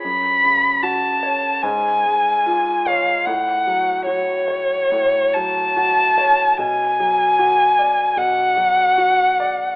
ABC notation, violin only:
X:1
M:4/4
L:1/8
Q:1/4=74
K:F#m
V:1 name="Violin"
b2 a2 g3 ^e | f2 c3 a3 | g4 f4 |]